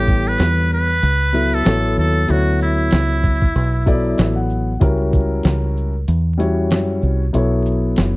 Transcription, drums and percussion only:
0.07 kick, shaker
0.38 snare, closed hi-hat
0.72 shaker
1.03 closed hi-hat
1.35 closed hi-hat, shaker
1.65 snare, closed hi-hat
1.97 shaker
2.28 closed hi-hat
2.60 shaker
2.91 snare, closed hi-hat
3.24 kick, shaker
3.42 kick
3.56 closed hi-hat
3.87 kick, closed hi-hat, shaker
4.18 snare, closed hi-hat
4.50 shaker
4.81 kick, closed hi-hat
5.13 kick, shaker
5.43 snare, closed hi-hat
5.77 shaker
6.08 closed hi-hat
6.40 closed hi-hat, shaker
6.71 snare, closed hi-hat
7.02 shaker
7.34 closed hi-hat
7.65 shaker
7.96 snare, closed hi-hat

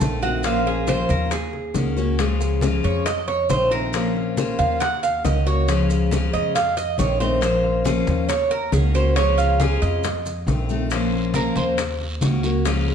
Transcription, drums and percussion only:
0.01 high bongo, low bongo, high conga, maracas
0.22 high bongo, high conga, maracas
0.43 high bongo, high conga, maracas
0.66 high bongo, high conga
0.87 high bongo, high conga, maracas
1.09 high conga, maracas
1.31 high bongo, high conga, maracas
1.53 high bongo, high conga
1.74 high bongo, low bongo, high conga, maracas
1.97 high bongo, high conga, maracas
2.19 high bongo, high conga, maracas
2.40 high bongo, high conga, maracas
2.61 high bongo, high conga, maracas
2.84 high conga, maracas
3.05 high bongo, high conga, maracas
3.28 high bongo, high conga
3.49 high bongo, low bongo, high conga, maracas
3.72 high bongo, high conga, maracas
3.93 high bongo, high conga, maracas
4.15 high bongo, high conga
4.37 high bongo, high conga, maracas
4.59 high conga, maracas
4.81 high bongo, high conga, maracas
5.03 high bongo, high conga, maracas
5.25 high bongo, low bongo, high conga, maracas
5.46 high bongo, high conga, maracas
5.68 high bongo, high conga, maracas
5.90 high bongo, high conga, maracas
6.11 high bongo, high conga, maracas
6.33 high conga, maracas
6.55 high bongo, high conga, maracas
6.77 high bongo, high conga, maracas
6.98 high bongo, low bongo, high conga, maracas
7.20 high bongo, high conga, maracas
7.42 high bongo, high conga, maracas
7.64 high bongo, high conga
7.85 high bongo, high conga, maracas
8.07 high conga, maracas
8.29 high bongo, high conga, maracas
8.50 high bongo, high conga
8.72 high bongo, low bongo, high conga, maracas
8.94 high bongo, high conga, maracas
9.16 high bongo, high conga, maracas
9.39 high bongo, high conga, maracas
9.60 high bongo, high conga, maracas
9.82 high conga, maracas
10.03 high bongo, high conga, maracas
10.25 high bongo, high conga, maracas
10.47 high bongo, low bongo, high conga, maracas
10.69 high bongo, high conga, maracas
10.90 high bongo, high conga, long guiro, maracas
11.13 high bongo, high conga
11.34 high bongo, high conga, short guiro, maracas
11.56 high conga, short guiro, maracas
11.77 high bongo, high conga, long guiro, maracas
11.99 high bongo, high conga
12.21 high bongo, low bongo, high conga, short guiro, maracas
12.42 high bongo, high conga, short guiro, maracas
12.64 high bongo, high conga, long guiro, maracas
12.87 high bongo, high conga

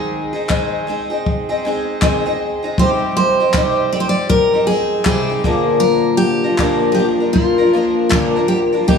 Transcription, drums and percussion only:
0.49 kick, clap
1.26 kick
2.02 kick, clap
2.78 kick
3.54 kick, clap
4.30 kick
5.05 kick, clap
5.44 kick
6.58 kick, clap
7.36 kick
8.11 kick, clap
8.89 kick

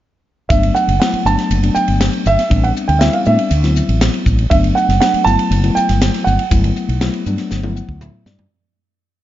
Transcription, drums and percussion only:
0.50 kick, hi-hat pedal, ride
0.63 ride
0.75 hi-hat pedal
0.89 ride
1.02 snare, hi-hat pedal, ride
1.14 ride
1.26 hi-hat pedal
1.39 snare, ride
1.51 hi-hat pedal, ride
1.63 ride
1.75 hi-hat pedal
1.88 ride
2.01 snare, hi-hat pedal, ride
2.13 ride
2.26 hi-hat pedal
2.39 snare, ride
2.51 kick, hi-hat pedal, ride
2.64 ride
2.77 hi-hat pedal
2.89 ride
3.01 snare, hi-hat pedal, ride
3.13 ride
3.25 hi-hat pedal
3.39 ride
3.51 hi-hat pedal, ride
3.64 snare, ride
3.76 hi-hat pedal
3.89 ride
4.01 snare, hi-hat pedal, ride
4.14 ride
4.26 kick, hi-hat pedal
4.39 ride
4.51 kick, hi-hat pedal, ride
4.64 ride
4.76 hi-hat pedal
4.90 snare, ride
5.01 snare, hi-hat pedal, ride
5.14 ride
5.26 hi-hat pedal
5.39 ride
5.51 hi-hat pedal, ride
5.64 ride
5.76 hi-hat pedal
5.89 snare, ride
6.02 snare, hi-hat pedal, ride
6.14 snare, ride
6.27 hi-hat pedal
6.39 ride
6.51 kick, hi-hat pedal, ride
6.64 ride
6.76 hi-hat pedal
6.89 ride
7.01 snare, hi-hat pedal, ride
7.14 ride
7.26 hi-hat pedal
7.38 snare, ride
7.51 snare, hi-hat pedal
7.63 high tom
7.76 hi-hat pedal
7.89 kick
8.01 hi-hat pedal, mid tom
8.26 snare, hi-hat pedal
8.39 floor tom

